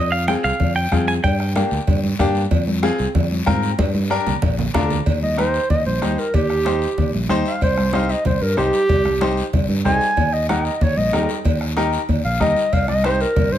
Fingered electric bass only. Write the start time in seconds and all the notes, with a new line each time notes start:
Already playing: F2
0.44 C2
0.60 F2
0.92 F2
1.24 G2
1.71 D2
1.88 G2
2.19 G2
2.51 F2
2.99 C2
3.15 F2
3.47 G#2
3.79 G2
4.27 C2
4.43 A#1
4.74 D2
5.07 D#2
5.70 D#2
5.86 A#1
6.03 D#2
6.34 D#2
6.98 D#2
7.14 A#1
7.30 D#2
7.62 C2
8.26 C2
8.42 G2
8.57 C2
8.89 C2
9.53 C2
9.69 G2
9.85 C2
10.17 D#2
10.81 D#2
10.97 A#1
11.13 D#2
11.45 D#2
12.09 D#2
12.25 A#1
12.41 D#2
12.73 C2
13.36 C2
13.52 G2